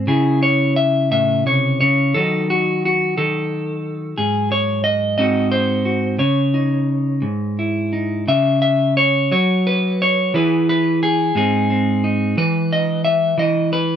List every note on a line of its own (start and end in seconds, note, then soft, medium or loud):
0.00 0.08 G#4 soft
0.07 1.80 C#3 medium
0.07 2.12 E4 soft
0.07 0.42 G#4 medium
0.43 0.76 C#5 medium
0.76 1.11 E5 medium
1.11 1.46 A2 medium
1.11 1.46 E5 medium
1.46 1.80 C3 medium
1.46 1.79 C#5 medium
1.81 2.15 C#3 medium
1.81 2.15 C#5 medium
2.14 3.17 D#3 medium
2.14 5.18 F#3 soft
2.14 4.55 D#4 soft
2.14 2.49 A4 medium
2.50 2.84 F#4 medium
2.85 3.17 F#4 medium
3.17 4.14 D#3 medium
3.17 4.18 A4 medium
4.18 5.17 G#2 medium
4.18 4.51 G#4 medium
4.52 4.83 C#5 medium
4.84 5.17 D#5 medium
5.18 6.20 G#2 medium
5.18 6.16 C4 soft
5.18 6.16 D#4 soft
5.18 5.84 F#4 soft
5.18 5.51 D#5 medium
5.52 6.19 C5 medium
5.85 6.15 F#4 soft
6.18 7.23 C#3 medium
6.18 8.28 C#5 medium
6.54 7.92 D#4 soft
7.22 8.28 G#2 medium
7.59 8.24 E4 soft
7.93 8.24 D#4 soft
8.28 9.32 C#3 medium
8.28 8.61 E5 medium
8.62 8.97 E5 medium
8.97 9.31 C#5 loud
9.32 10.34 F#3 medium
9.32 10.01 C#5 medium
9.67 10.34 B4 medium
10.02 10.35 C#5 medium
10.34 11.31 E3 medium
10.34 11.32 E4 medium
10.34 11.03 G#4 medium
10.34 10.68 B4 medium
10.69 11.02 B4 medium
11.03 11.36 G#4 medium
11.35 12.36 G#2 medium
11.35 13.96 G#3 soft
11.35 11.69 C4 soft
11.35 12.03 D#4 soft
11.35 12.37 G#4 medium
11.70 12.33 C4 soft
12.04 12.37 D#4 medium
12.37 13.34 E3 medium
12.37 13.38 B4 medium
12.73 13.04 D#5 medium
13.05 13.38 E5 medium
13.38 13.96 E3 medium
13.38 13.72 D#5 medium
13.73 13.96 B4 medium